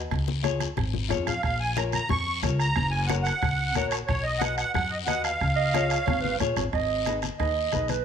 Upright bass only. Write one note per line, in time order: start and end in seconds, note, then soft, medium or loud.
0.12 0.65 C#2 loud
0.77 1.12 G#1 loud
1.11 1.37 F2 loud
1.44 1.97 A#1 loud
2.10 2.44 F2 medium
2.43 2.70 C#2 loud
2.76 3.29 F#1 loud
3.43 3.75 C#2 medium
3.75 4.02 A#1 loud
4.09 4.62 B1 loud
4.75 5.07 F#2 loud
5.07 5.34 D#2 loud
5.41 5.94 C#2 loud
6.07 6.40 G#1 loud
6.40 6.55 A#1 medium
6.56 6.72 G#1 medium
6.73 7.26 G#1 loud
7.40 7.66 D#2 medium
7.73 8.00 B1 loud